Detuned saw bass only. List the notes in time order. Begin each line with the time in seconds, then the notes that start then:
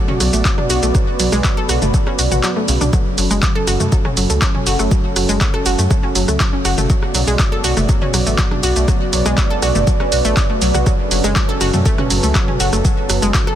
0.20 B1
0.33 A1
0.70 B1
0.83 B1
1.20 B1
1.32 B1
1.69 B1
1.82 F#1
2.19 B1
2.32 A1
2.68 B1
2.81 B1
3.18 F#1
3.31 F#1
3.67 F#1
3.80 F#2
4.17 F#1
4.30 C#2
4.67 F#1
4.79 F#1
5.16 F#1
5.29 F#1
5.66 F#1
5.79 F#2
6.15 F#1
6.28 C#2
6.65 F#1
6.78 F#1
7.15 B1
7.27 B1
7.64 B1
7.77 F#1
8.14 B1
8.26 A1
8.63 B1
8.76 B1
9.13 B1
9.26 B1
9.62 B1
9.75 F#1
10.12 B1
10.25 A1
10.62 B1
10.74 B1
11.11 F#1
11.24 F#1
11.61 F#1
11.74 F#2
12.10 F#1
12.23 C#2
12.60 F#1
12.73 F#1
13.10 F#1
13.22 F#1